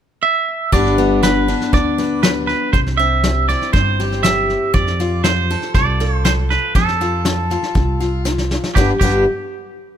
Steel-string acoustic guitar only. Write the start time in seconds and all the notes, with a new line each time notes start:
0.72 G2 G3 B3 D4 B4
0.98 B3
1.23 G3
1.48 D4
1.73 D3
1.98 B4
2.23 G3
2.74 C3
2.99 C4
3.24 G3
3.49 E4
3.73 G2
4.00 G4
4.24 G3
4.74 F3
5.00 F4
5.24 C4
5.51 A4
5.75 C3
6.00 A4
6.25 C4
6.75 F3
7.01 F4
7.26 C4
7.51 F4
7.75 C3
8.00 F4
8.25 C4
8.76 G2 G3 B3 D4 B4
9.01 G2 G3 B3 D4 B4